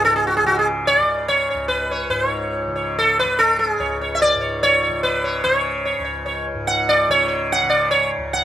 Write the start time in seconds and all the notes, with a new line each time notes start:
Already playing: C#2 G#2 C#3
0.05 A4
0.16 G#4
0.27 F#4
0.37 G#4
0.43 C#3 F#4
0.59 G#4
0.87 C#5
0.98 C#3 D5
1.28 C#5
1.50 C#5
1.54 C#2
1.68 B4
1.91 C#5
2.09 G#2 C#5
2.67 C#3
2.76 C#5
2.99 A4
3.19 B4
3.24 C#3
3.39 A4
3.59 G#4
3.79 C#2 C#5
4.01 C#5
4.15 E5
4.22 D5
4.35 G#2
4.41 C#5
4.63 C#5
4.83 C#5
4.89 C#3
5.03 B4
5.24 C#5
5.44 C#3 C#5
5.85 C#5
5.99 C#2
6.05 C#5
6.26 C#5
6.54 G#2
6.67 F#5
6.89 D5
7.08 C#3 C#5
7.28 C#5
7.52 F#5
7.63 C#3
7.70 D5
7.91 C#5
8.18 C#2
8.33 F#5